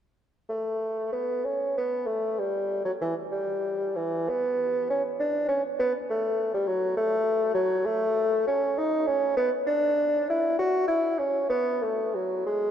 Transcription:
0.50 A3
1.13 B3
1.44 C#4
1.78 B3
2.07 A3
2.39 G3
2.85 F#3
3.01 E3
3.32 G3
3.96 E3
4.29 B3
4.90 C#4
5.20 D4
5.49 C#4
5.80 B3
6.10 A3
6.54 G3
6.68 F#3
6.97 A3
7.54 F#3
7.85 A3
8.47 C#4
8.78 D#4
9.07 C#4
9.37 B3
9.67 D4
10.30 E4
10.59 F#4
10.88 E4
11.19 C#4
11.50 B3
11.83 A3
12.15 F#3
12.46 G#3

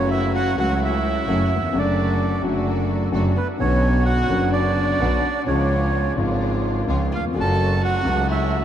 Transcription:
Already playing: F#1 F#2 C#3 F#3 A3 C#4 F#4
0.10 E4 E5
0.35 F#4 F#5
0.54 C#2 C#3 F#3 A3 C#4 F#4
0.59 F#4 F#5
0.80 E4 E5
1.27 F#1 F#2 C#3 F#3 A3 C#4 F#4
1.56 D#2
1.62 E2
1.68 F2 D3
1.73 F#1 F#2 F#3 A3 D4 F#4
1.78 D5
2.41 F#1 F#2 D3 F#3 A3 D4 F#4
3.12 F#1 F#2 D3 F#3 A3 D4 F#4
3.37 B3 B4
3.58 B1 B2 D3 F#3 B3 C#4 F#4 C#5
3.63 F#4
4.04 F#4 F#5
4.28 F#1 F#2 D3 F#3 B3 D4 F#4
4.33 F#4
4.51 D4 D5
4.98 B1 B2 D3 F#3 B3 D4 F#4
5.46 C#2 C#3 F3 G#3 C#4 F4 C#5
6.15 G#1 G#2 C#3 F3 G#3 C#4 F4
6.20 F4
6.87 C#2 C#3 F3 G#3 C#4 F4
7.12 F4 F5
7.17 D#2
7.25 E2
7.30 F2 C#3
7.34 F#1 F#2 F#3 A3 C#4 F#4 A4
7.41 A5
7.82 F#4 F#5
8.02 C#2 C#3 F#3 A3 C#4 F#4
8.28 E4 E5

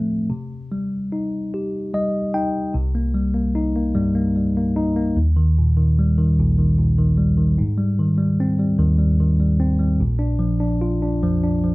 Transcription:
Already playing: A2 F3 A3 C4
0.30 C3
0.72 G3
1.12 D#4
1.54 G4
1.94 G3 D#5
2.34 D#4 G5
2.74 C2 C3
2.95 A#3
3.15 G3
3.34 A#3
3.55 D#4
3.76 A#3
3.95 G2 G3
4.15 A#3
4.36 G3
4.57 A#3
4.76 D#4
4.96 A#3
5.17 D#2
5.36 D#3
5.58 A#2
5.77 D#3
5.99 G3
6.18 D#3
6.39 A#1 A#2
6.59 D#3
6.78 A#2
6.98 D#3
7.17 G3
7.37 D#3
7.58 G#2
7.77 G3
7.99 D#3
8.18 G3
8.40 C4
8.59 G3
8.79 D#2 D#3
8.99 G3
9.20 D#3
9.40 G3
9.60 C4
9.79 G3
10.00 A#1 A#2
10.19 D4
10.39 F3
10.60 D4
10.81 F4
11.02 D4
11.22 F2 F3
11.44 D4
11.64 F3

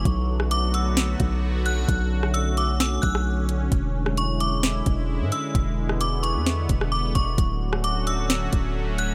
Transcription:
Already playing: F#3
0.05 B1 D3 A3 B3 F#4, kick, closed hi-hat
0.40 cross-stick
0.51 D6, closed hi-hat
0.74 E6, closed hi-hat
0.97 snare, closed hi-hat
1.20 B1, kick, closed hi-hat
1.66 F#6, closed hi-hat
1.89 B1 C#4, kick, closed hi-hat
2.23 cross-stick
2.34 E6, closed hi-hat
2.57 D6, closed hi-hat
2.80 E6, snare, closed hi-hat
3.02 B1 F#6, kick, closed hi-hat
3.15 cross-stick
3.49 closed hi-hat
3.72 E1 G#3 E4, kick, closed hi-hat
4.06 cross-stick
4.17 C#6, closed hi-hat
4.40 D6, closed hi-hat
4.63 snare, closed hi-hat
4.86 E1, kick, closed hi-hat
5.21 G#2
5.32 E6, closed hi-hat
5.55 E1 B3, kick, closed hi-hat
5.89 cross-stick
6.01 D6, closed hi-hat
6.23 C#6, closed hi-hat
6.35 E2
6.46 snare, closed hi-hat
6.69 E1, kick, closed hi-hat
6.81 cross-stick
6.92 D6
7.15 E1 C#6, kick, closed hi-hat
7.38 D1 F#3 A3 C#4 F#4, kick, closed hi-hat
7.73 cross-stick
7.84 D6, closed hi-hat
8.07 E6, closed hi-hat
8.30 snare, closed hi-hat
8.53 D1, kick, closed hi-hat
8.98 F#6, closed hi-hat

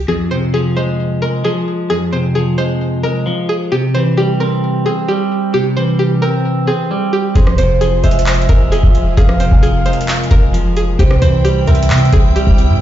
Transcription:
0.08 F2 G#4
0.31 C3 C5
0.54 F3 G#4
0.77 G#3 C5
1.22 G#3 A#4
1.44 F3 G#4
1.90 F2 G#4
2.12 C3 C5
2.35 F3 G#4
2.58 G#3 C5
3.03 G#3 A#4
3.26 F3
3.49 G#4
3.72 C3 G4
3.94 E3 C5
4.17 G3 G4
4.40 C4 A#4
4.86 C4 G#4
5.08 G3 G4
5.54 C3 G4
5.77 E3 C5
5.99 G4
6.22 C4 A#4
6.67 C4 G#4
6.91 G3
7.13 G4
7.35 F1 F2 F3 F4 G#4 C5, kick, closed hi-hat
7.47 cross-stick
7.58 F1 C3 C5, closed hi-hat
7.81 F3 G#4, closed hi-hat
8.04 F1 G#3 C5 E5, closed hi-hat
8.11 closed hi-hat
8.19 closed hi-hat
8.26 clap, closed hi-hat
8.34 closed hi-hat
8.42 closed hi-hat
8.49 F1 G#3 A#4, kick, closed hi-hat
8.72 F3 G#4, closed hi-hat
8.83 F1, kick
8.95 closed hi-hat
9.17 F1 F2 G#4 A#4 F5, kick, closed hi-hat
9.29 cross-stick
9.40 C3 C5, closed hi-hat
9.52 F1, kick
9.63 F3 G#4, closed hi-hat
9.86 G#3 C5, closed hi-hat
9.93 closed hi-hat
10.01 closed hi-hat
10.08 clap, closed hi-hat
10.16 closed hi-hat
10.24 closed hi-hat
10.31 F1 G#3 A#4, kick, closed hi-hat
10.53 F3, closed hi-hat
10.77 G#4, closed hi-hat
10.99 C2 C3 C4 E4 G4 C5 G5, kick, closed hi-hat
11.11 cross-stick
11.22 C2 E3 C5, closed hi-hat
11.44 G3 G4, closed hi-hat
11.67 C2 C4 A#4 E5, closed hi-hat
11.75 closed hi-hat
11.83 closed hi-hat
11.90 C3, clap, closed hi-hat
11.98 closed hi-hat
12.05 closed hi-hat
12.13 C2 C4 G#4, kick, closed hi-hat
12.36 G3 G4, closed hi-hat
12.47 C2, kick
12.58 closed hi-hat
12.70 G2

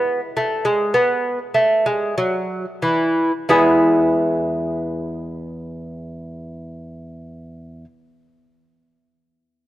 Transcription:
Already playing: B3 E4
0.37 A3
0.65 G#3
0.94 B3
1.54 A3
1.86 G#3
2.18 F#3
2.82 E3
3.49 E2 G#3 B3 E4 G#4

